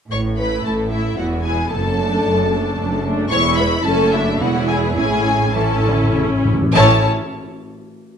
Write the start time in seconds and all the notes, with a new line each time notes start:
0.11 A1 A2 C#5 C#6
0.38 A3 E4 B4 B5
0.65 A1 A2 A4 A5
0.92 A3 E4 E5
1.18 E1 E2 B3 E4 F#4 F#5
1.45 B3 E4 G#4 G#5
1.71 F#1 F#2 A4 A5
2.00 A3 D4
2.26 F#1 F#2
2.53 A3 D4
2.78 F#1 F#2
3.05 A3 D4
3.31 E1 E2 G#3 E4 C#5 C#6
3.57 B4 B5
3.85 F#1 F#2 A3 C#4 A4 A5
4.13 D4 E4 E5
4.40 E1 E2 B3 E4 F#4 F#5
4.68 G#4 G#5
4.96 A1 A2 C#4 E4 G#4 G#5
5.05 A2
5.12 A2
5.29 A2
5.37 A2
5.46 A2
5.54 A2 E3 C#4 E4 A4 A5
5.63 A2
5.70 A2
5.79 A2
5.85 A2 D3
5.95 A2
6.03 A2
6.11 A2 C#3
6.19 A2
6.28 A2
6.36 A2
6.45 G#2 A2
6.53 A2
6.62 A2
6.75 A1 A2 C#4 E4 C#5 A5